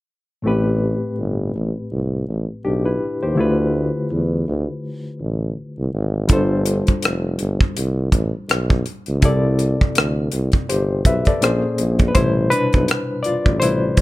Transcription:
0.42 0.96 A1 medium
0.42 3.32 A2 medium
0.42 3.33 A3 medium
0.42 3.33 C4 medium
0.46 2.61 G4 medium
0.46 2.61 B4 medium
1.19 1.51 G1 medium
1.55 1.73 A1 medium
1.92 2.24 C2 medium
2.28 2.47 A1 medium
2.65 2.97 B1 medium
2.65 2.85 D4 soft
2.65 2.84 G4 medium
2.86 3.20 E4 soft
2.86 3.20 B4 soft
3.23 3.36 D#2 medium
3.23 3.57 G4 soft
3.23 3.57 C5 soft
3.35 3.89 D2 medium
3.35 6.25 D3 medium
3.35 6.25 A3 medium
3.35 6.26 E4 medium
3.35 6.27 F4 medium
3.40 6.27 B4 medium
4.11 4.44 E2 medium
4.48 4.66 D2 medium
5.21 5.53 A1 medium
5.79 5.92 C2 medium
5.94 6.26 G#1 medium
6.28 6.81 G1 medium
6.28 9.17 G3 medium
6.28 9.18 D4 medium
6.28 9.19 F4 medium
6.28 9.19 A4 medium
6.28 kick medium
6.28 closed hi-hat medium
6.33 9.20 C5 medium
6.66 closed hi-hat medium
6.87 kick medium
6.87 closed hi-hat soft
7.03 7.36 F1 medium
7.03 cross-stick medium
7.03 closed hi-hat medium
7.39 7.59 G1 medium
7.39 closed hi-hat medium
7.61 kick medium
7.77 8.09 C2 medium
7.77 closed hi-hat medium
8.12 8.31 A1 medium
8.12 kick medium
8.12 closed hi-hat medium
8.49 8.82 B1 medium
8.49 cross-stick medium
8.49 closed hi-hat medium
8.70 kick medium
8.86 closed hi-hat medium
9.06 9.21 C#2 medium
9.06 closed hi-hat soft
9.20 9.74 C2 medium
9.20 11.37 C3 medium
9.20 11.37 C4 medium
9.20 11.38 E4 medium
9.20 10.67 A4 medium
9.20 kick medium
9.20 closed hi-hat medium
9.25 10.67 D5 medium
9.59 closed hi-hat medium
9.81 kick medium
9.95 10.29 D2 medium
9.95 cross-stick medium
9.95 closed hi-hat medium
10.32 10.51 C2 medium
10.32 closed hi-hat medium
10.52 kick medium
10.52 closed hi-hat soft
10.69 11.02 G1 medium
10.69 11.04 G4 soft
10.69 11.04 C5 medium
10.69 closed hi-hat medium
11.05 11.24 B1 medium
11.05 11.26 B4 soft
11.05 11.26 E5 medium
11.05 kick medium
11.05 closed hi-hat soft
11.25 11.62 A4 soft
11.25 11.61 D5 medium
11.25 kick medium
11.25 closed hi-hat soft
11.41 11.61 A#1 medium
11.41 12.15 A#2 medium
11.41 12.15 A#3 medium
11.41 12.15 C#4 medium
11.41 12.16 G#4 medium
11.41 12.13 C5 medium
11.41 cross-stick medium
11.41 closed hi-hat medium
11.78 12.12 A#1 medium
11.78 closed hi-hat medium
11.99 kick medium
11.99 closed hi-hat soft
12.08 12.15 B4 medium
12.15 12.48 A1 loud
12.15 14.01 B2 medium
12.15 13.60 C3 soft
12.15 13.61 G3 soft
12.15 12.50 E4 medium
12.15 12.49 C5 medium
12.15 kick medium
12.15 closed hi-hat medium
12.50 13.21 D4 medium
12.50 13.20 B4 medium
12.50 closed hi-hat medium
12.73 12.87 B1 medium
12.73 kick medium
12.73 closed hi-hat soft
12.88 cross-stick medium
12.88 closed hi-hat medium
13.23 13.34 A1 soft
13.23 13.59 F4 medium
13.23 13.61 D5 medium
13.23 closed hi-hat soft
13.46 13.93 A1 medium
13.46 kick medium
13.60 13.94 C3 soft
13.60 13.95 G3 soft
13.60 14.01 E4 medium
13.60 13.95 B4 soft
13.60 14.01 C5 medium
13.60 closed hi-hat medium
13.97 14.01 A1 medium
13.97 kick medium
13.97 closed hi-hat medium

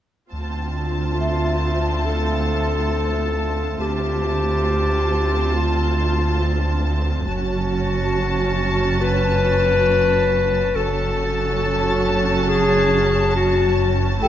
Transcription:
0.31 3.76 D2 soft
0.31 3.76 D2 medium
0.31 3.76 C4 soft
0.31 3.76 F4 soft
0.31 3.76 A5 soft
0.76 2.07 F4 soft
1.21 3.77 E5 soft
2.05 3.79 A4 medium
3.79 7.29 D2 medium
3.79 7.24 D2 soft
3.79 7.23 C4 soft
3.79 7.23 F4 soft
3.79 5.56 G4 medium
3.79 7.24 A5 soft
5.54 6.84 F4 soft
7.28 10.75 F#1 medium
7.28 10.74 F#1 soft
7.28 10.73 F#2 soft
7.28 10.72 C#4 soft
7.28 9.03 F#4 medium
7.28 10.72 F#4 soft
7.28 10.72 A5 soft
9.02 10.77 B4 medium
10.74 14.24 F#1 medium
10.74 14.19 F#1 soft
10.74 14.19 F#2 medium
10.74 14.19 C#4 soft
10.74 14.19 F#4 soft
10.74 12.48 A4 medium
10.74 14.19 A5 medium
12.48 13.34 G#4 medium
13.36 13.94 F#4 medium
14.22 14.28 A1 medium
14.22 14.28 A1 soft
14.22 14.28 A2 medium
14.22 14.28 A3 medium
14.22 14.28 E4 medium
14.22 14.28 G4 soft
14.22 14.28 A4 medium
14.22 14.28 G5 soft
14.22 14.28 A5 medium

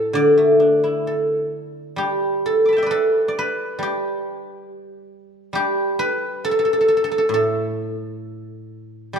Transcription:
0.00 0.15 A2 medium
0.00 0.84 E4 medium
0.00 1.07 A4 medium
0.13 2.90 D3 medium
0.13 2.00 D5 medium
0.38 2.21 A3 soft
0.60 2.44 D4 soft
0.84 2.68 E4 soft
1.07 2.45 A4 soft
1.96 3.77 G3 soft
1.96 3.82 G4 medium
2.46 2.90 A4 medium
2.65 4.04 B5 soft
2.65 3.87 D6 soft
2.73 4.32 G5 soft
2.73 4.17 A5 soft
2.78 4.50 E5 soft
2.83 3.38 B4 soft
2.83 3.28 D5 soft
2.91 5.10 A4 medium
3.28 5.13 D5 medium
3.39 5.43 B4 medium
3.79 5.52 G3 medium
3.83 5.55 G4 medium
5.53 8.21 G3 soft
5.53 7.91 G4 medium
5.99 8.04 B4 medium
6.45 6.51 A4 medium
6.51 6.59 A4 medium
6.59 6.65 A4 medium
6.65 6.73 A4 medium
6.73 6.80 A4 medium
6.81 6.88 A4 soft
6.88 6.96 A4 medium
6.97 7.04 A4 soft
7.04 7.11 A4 medium
7.12 7.18 A4 soft
7.18 7.33 A4 medium
7.29 9.19 A2 medium
7.34 9.19 A4 medium
9.13 9.19 G3 soft
9.13 9.19 G4 medium

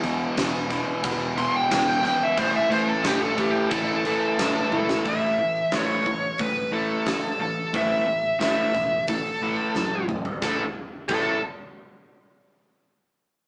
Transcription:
0.03 0.35 E2 medium
0.03 0.25 E2 medium
0.03 0.36 B2 medium
0.03 0.37 E3 loud
0.03 crash medium
0.37 0.80 E1 loud
0.37 0.70 E2 loud
0.37 0.70 B2 loud
0.37 0.71 E3 loud
0.37 snare loud
0.37 crash medium
0.70 1.02 E2 medium
0.70 1.03 B2 loud
0.70 1.04 E3 loud
0.70 kick medium
0.70 snare soft
0.70 crash medium
1.03 1.47 E1 loud
1.03 1.36 E2 medium
1.03 1.36 B2 loud
1.03 1.37 E3 loud
1.03 kick loud
1.03 crash medium
1.37 1.69 E2 loud
1.37 1.70 B2 loud
1.37 1.71 E3 loud
1.37 1.54 C6 loud
1.37 crash medium
1.56 1.71 G5 loud
1.70 1.92 E1 medium
1.70 2.02 E2 medium
1.70 2.03 B2 medium
1.70 2.03 E3 medium
1.70 1.88 G5 loud
1.70 snare loud
1.70 crash medium
1.89 2.03 G5 medium
2.03 2.25 G#1 medium
2.03 2.35 E2 medium
2.03 2.36 B2 medium
2.03 2.37 E3 loud
2.03 2.23 G5 medium
2.03 snare soft
2.03 crash medium
2.23 2.38 E5 loud
2.37 2.59 A1 loud
2.37 2.69 A2 loud
2.37 2.70 E3 loud
2.37 2.70 A3 loud
2.37 2.54 C5 loud
2.37 kick loud
2.37 crash medium
2.56 2.72 E5 loud
2.70 2.92 A2 medium
2.70 3.03 A2 medium
2.70 3.03 E3 medium
2.70 3.03 A3 medium
2.70 2.87 C5 medium
2.70 crash medium
2.88 3.04 A4 medium
3.03 3.47 A1 loud
3.03 3.36 A2 loud
3.03 3.37 E3 loud
3.03 3.37 A3 loud
3.03 3.22 G4 medium
3.03 snare loud
3.03 crash medium
3.22 3.38 A4 medium
3.38 3.70 A2 medium
3.38 3.71 E3 medium
3.38 3.71 A3 medium
3.38 3.70 G4 loud
3.38 kick medium
3.38 crash medium
3.70 4.14 A1 medium
3.70 4.04 A2 medium
3.70 4.05 E3 loud
3.70 4.05 A3 loud
3.70 4.76 A4 loud
3.70 kick loud
3.70 crash medium
4.05 4.38 A2 medium
4.05 4.38 E3 medium
4.05 4.38 A3 loud
4.05 crash medium
4.38 4.60 A1 medium
4.38 4.71 A2 medium
4.38 4.71 E3 medium
4.38 4.72 A3 medium
4.38 snare loud
4.38 crash medium
4.72 4.94 F#1 medium
4.72 5.04 A2 medium
4.72 5.04 E3 medium
4.72 5.05 A3 medium
4.72 high tom medium
4.77 5.06 A4 medium
4.89 snare loud
5.05 5.30 A1 medium
5.05 5.37 A2 medium
5.05 5.38 E3 medium
5.05 5.38 A3 loud
5.05 5.75 E5 loud
5.05 kick medium
5.05 open hi-hat medium
5.38 5.63 A1 medium
5.38 5.69 A2 medium
5.38 5.70 E3 medium
5.72 5.97 A1 medium
5.72 6.04 A2 medium
5.72 6.05 E3 medium
5.72 6.05 A3 loud
5.72 6.43 C#5 medium
5.72 snare loud
5.72 open hi-hat medium
6.06 6.31 A1 medium
6.06 6.37 A2 medium
6.06 6.37 E3 medium
6.06 kick medium
6.38 6.89 A1 medium
6.38 6.71 A2 medium
6.38 6.71 E3 medium
6.38 6.73 B4 medium
6.38 kick loud
6.38 open hi-hat medium
6.73 7.05 A2 medium
6.73 7.05 E3 medium
6.73 7.05 A3 loud
6.73 7.40 A4 medium
7.06 7.32 A1 medium
7.06 7.37 A2 medium
7.06 7.37 E3 medium
7.06 snare loud
7.06 open hi-hat medium
7.40 7.65 A1 medium
7.40 7.71 A2 medium
7.40 7.71 E3 medium
7.40 7.72 A4 medium
7.73 7.99 A1 medium
7.73 8.05 A2 medium
7.73 8.05 E3 loud
7.73 8.06 A3 medium
7.73 8.38 E5 loud
7.73 kick loud
7.73 open hi-hat soft
8.06 8.32 A1 medium
8.06 8.37 A2 medium
8.06 8.37 E3 medium
8.40 8.66 A1 medium
8.40 8.72 A2 medium
8.40 8.73 E3 loud
8.40 8.73 A3 loud
8.40 9.04 E5 medium
8.40 snare loud
8.40 open hi-hat medium
8.73 8.99 E1 medium
8.73 9.05 A2 medium
8.73 9.05 E3 medium
8.73 kick medium
8.73 snare soft
9.07 9.58 A1 loud
9.07 9.39 A2 medium
9.07 9.39 E3 medium
9.07 10.05 A4 medium
9.07 kick loud
9.07 open hi-hat medium
9.42 9.74 A2 loud
9.42 9.74 E3 medium
9.42 9.74 A3 medium
9.75 10.25 F#2 medium
9.75 10.06 A2 medium
9.75 10.06 E3 loud
9.75 snare medium
9.91 high tom medium
10.08 10.39 A2 medium
10.08 10.39 E3 medium
10.08 mid tom loud
10.25 floor tom loud
10.42 10.61 A1 loud
10.42 10.63 A2 medium
10.42 10.63 E3 medium
10.42 10.64 A3 loud
10.42 10.62 A4 medium
10.42 kick loud
10.42 snare medium
11.08 11.41 A1 medium
11.08 11.36 A2 medium
11.08 11.36 E3 medium
11.08 11.37 A3 loud
11.08 11.40 A4 medium
11.08 kick loud
11.08 crash medium

